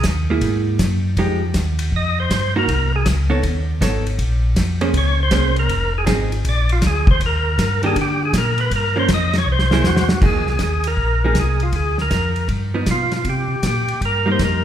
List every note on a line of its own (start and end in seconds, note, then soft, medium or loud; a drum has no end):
0.03 0.41 D#2 medium
0.03 kick soft
0.03 snare medium
0.03 hi-hat pedal medium
0.03 ride medium
0.30 0.78 A#3 medium
0.30 0.78 E4 medium
0.30 0.78 G#4 medium
0.41 0.78 G#2 medium
0.41 kick soft
0.41 ride medium
0.79 1.16 F#2 medium
0.79 kick soft
0.79 snare medium
0.79 hi-hat pedal medium
0.79 ride medium
1.16 1.54 F2 medium
1.16 1.41 F3 medium
1.16 1.41 G#3 medium
1.16 1.41 D#4 medium
1.16 1.41 G4 medium
1.16 kick soft
1.16 ride medium
1.54 1.91 D#2 medium
1.54 kick soft
1.54 snare medium
1.54 hi-hat pedal medium
1.54 ride medium
1.79 ride medium
1.92 2.29 F2 medium
1.92 kick soft
1.96 2.19 D#5 loud
2.20 2.54 C5 medium
2.30 2.67 G2 medium
2.30 kick soft
2.30 snare medium
2.30 hi-hat pedal medium
2.30 ride medium
2.56 2.68 A#3 medium
2.56 2.68 D#4 medium
2.56 2.68 F#4 medium
2.56 2.92 A#4 medium
2.68 3.05 C2 medium
2.68 kick soft
2.68 ride medium
2.96 3.07 G#4 medium
3.06 3.43 C#2 medium
3.06 kick soft
3.06 snare medium
3.06 hi-hat pedal medium
3.06 ride medium
3.30 3.42 B3 medium
3.30 3.42 D#4 medium
3.30 3.42 A4 medium
3.30 3.43 C#5 medium
3.43 3.80 D#2 medium
3.43 kick soft
3.43 ride medium
3.81 4.18 G#1 medium
3.81 4.04 B3 soft
3.81 4.04 D#4 soft
3.81 4.04 A4 soft
3.81 4.05 C#5 medium
3.81 kick soft
3.81 snare medium
3.81 hi-hat pedal medium
3.81 ride medium
4.07 ride soft
4.18 4.55 A#1 medium
4.18 kick soft
4.18 ride medium
4.55 4.93 F2 medium
4.55 kick soft
4.55 snare medium
4.55 hi-hat pedal soft
4.55 ride medium
4.81 4.93 A#3 medium
4.81 4.93 C#4 medium
4.81 4.93 G#4 medium
4.81 4.94 C5 medium
4.81 ride soft
4.93 5.31 C#2 medium
4.93 kick soft
4.93 ride medium
4.98 5.20 C#5 loud
5.23 5.56 C5 loud
5.31 5.68 C2 medium
5.31 5.55 A#3 medium
5.31 5.55 C#4 medium
5.31 5.55 G#4 medium
5.31 5.55 C5 medium
5.31 kick soft
5.31 snare medium
5.31 hi-hat pedal medium
5.31 ride medium
5.56 5.93 A#4 medium
5.56 ride soft
5.69 6.06 F1 medium
5.69 kick soft
5.69 ride medium
5.98 6.05 G#4 medium
6.06 6.44 G#1 medium
6.06 6.30 F3 medium
6.06 6.29 C4 medium
6.06 6.30 D#4 medium
6.06 6.30 G#4 medium
6.06 kick soft
6.06 snare medium
6.06 hi-hat pedal medium
6.06 ride medium
6.32 ride soft
6.44 6.81 A#1 medium
6.44 kick soft
6.44 ride medium
6.49 6.71 D5 medium
6.69 6.84 F4 medium
6.69 ride soft
6.82 7.19 D2 medium
6.82 kick soft
6.82 snare medium
6.82 hi-hat pedal medium
6.82 ride medium
6.87 7.09 G#4 medium
7.07 7.22 C5 loud
7.07 kick medium
7.19 7.57 D#2 medium
7.19 kick soft
7.19 ride medium
7.26 7.82 A#4 medium
7.58 7.95 G2 medium
7.58 kick soft
7.58 snare medium
7.58 hi-hat pedal medium
7.58 ride medium
7.83 7.95 D#3 medium
7.83 7.95 A#3 medium
7.83 7.95 D4 medium
7.83 7.96 G4 medium
7.83 7.97 G#4 loud
7.83 ride soft
7.95 8.32 D3 medium
7.95 kick soft
7.95 ride medium
8.01 8.23 G4 medium
8.25 8.36 G#4 medium
8.33 8.70 A#2 medium
8.33 kick soft
8.33 snare medium
8.33 hi-hat pedal soft
8.33 ride medium
8.38 8.60 A#4 medium
8.58 8.72 B4 loud
8.58 ride soft
8.70 9.08 G2 medium
8.70 kick soft
8.70 ride medium
8.76 8.98 A#4 medium
8.96 9.08 F3 medium
8.96 9.08 A#3 medium
8.96 9.08 C#4 medium
8.96 9.11 C5 loud
9.08 9.46 F2 medium
9.08 kick soft
9.08 snare medium
9.08 hi-hat pedal soft
9.08 ride medium
9.14 9.36 D#5 loud
9.33 snare medium
9.33 ride soft
9.38 9.49 C#5 loud
9.46 9.83 C2 medium
9.52 10.08 C5 medium
9.59 snare medium
9.71 9.84 A#3 medium
9.71 9.84 E4 medium
9.71 9.84 G#4 medium
9.71 snare medium
9.84 10.21 E2 loud
9.84 10.21 F#4 medium
9.84 snare medium
9.84 hi-hat pedal medium
9.96 snare medium
10.09 snare medium
10.21 10.34 F2 medium
10.21 10.45 F3 medium
10.21 10.45 A#3 medium
10.21 10.45 D#4 medium
10.21 10.46 G#4 medium
10.21 kick medium
10.21 crash medium
10.26 10.49 G#4 medium
10.34 10.47 D#2 soft
10.45 10.58 C2 medium
10.45 snare soft
10.50 10.62 G#4 medium
10.59 10.97 D#2 medium
10.59 kick soft
10.59 snare medium
10.59 hi-hat pedal medium
10.59 ride medium
10.63 10.88 G#4 medium
10.84 11.39 A#4 loud
10.84 ride medium
10.97 11.34 A#1 medium
10.97 kick soft
11.24 11.36 F3 medium
11.24 11.36 A#3 medium
11.24 11.36 D#4 medium
11.24 11.36 G#4 medium
11.35 11.72 C2 medium
11.35 kick soft
11.35 snare medium
11.35 hi-hat pedal soft
11.35 ride medium
11.40 11.64 G#4 medium
11.60 11.76 F4 medium
11.60 ride soft
11.72 12.10 D2 medium
11.72 11.98 G#4 medium
11.72 kick soft
11.72 ride medium
11.98 12.48 A#4 medium
11.98 snare soft
12.11 12.48 F2 medium
12.11 kick soft
12.11 snare medium
12.11 hi-hat pedal medium
12.11 ride medium
12.36 ride soft
12.48 12.86 G2 medium
12.48 kick soft
12.48 ride medium
12.74 12.87 F3 medium
12.74 12.87 B3 medium
12.74 12.87 D#4 medium
12.86 13.24 B2 medium
12.86 kick soft
12.86 snare medium
12.86 hi-hat pedal medium
12.86 ride medium
12.91 13.13 F4 medium
13.11 snare soft
13.11 ride soft
13.17 13.28 F4 medium
13.24 13.48 C3 medium
13.24 kick soft
13.24 ride medium
13.29 13.66 G4 medium
13.49 13.56 C3 soft
13.62 13.86 A#2 medium
13.62 kick soft
13.62 snare medium
13.62 hi-hat pedal medium
13.62 ride medium
13.67 14.01 G4 medium
13.87 13.94 A#2 soft
13.87 ride soft
14.01 14.38 G2 medium
14.01 kick soft
14.01 ride medium
14.05 14.29 A#4 medium
14.26 14.64 G3 medium
14.26 14.64 A#3 medium
14.26 14.64 D#4 medium
14.32 14.43 C5 medium
14.39 14.64 F2 medium
14.39 kick soft
14.39 snare medium
14.39 hi-hat pedal soft
14.39 ride medium
14.45 14.64 A#4 medium